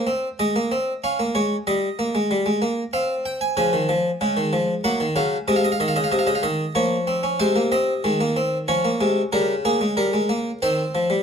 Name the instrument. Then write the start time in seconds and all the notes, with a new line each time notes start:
harpsichord
Already playing: C5
0.07 C4
0.39 G#3 D#5
0.56 A#3
0.72 C4
1.04 C#4 F5
1.19 A#3
1.35 G#3 C#5
1.67 G3 D#5
1.99 A#3
2.15 G#3
2.31 G3
2.46 G#3
2.62 A#3
2.93 C4 F5
3.26 G5
3.41 G#5
3.57 C#3 F3 G#5
3.73 D#3
3.89 F3
4.21 C#3 G#3
4.37 D#3
4.53 F3
4.84 F#3 A#3 F#5
5.00 D#3
5.16 C#3 F#3 F5
5.48 C3 G#3 D#5
5.56 F5
5.64 D#5
5.72 F5
5.80 D#3 D#5
5.88 F5
5.96 C#3 D#5
6.04 F5
6.12 C3 D#5
6.19 F5
6.27 C#3 D#5
6.35 F5
6.43 D#3 D#5
6.75 F3 A#3 C#5
7.07 C4
7.23 C#4
7.40 C3 G#3 C5
7.56 A#3
7.72 C4 D#5
8.04 D#3 G#3
8.21 A#3
8.36 C4
8.68 F3 C#4 C#5
8.85 A#3
9.01 C3 G#3
9.33 C#3 G3 A#4
9.65 A#3 G#4
9.81 G#3
9.97 G3 A#4
10.13 G#3
10.29 A#3
10.62 D#3 C4 C5
10.95 F3
11.10 G3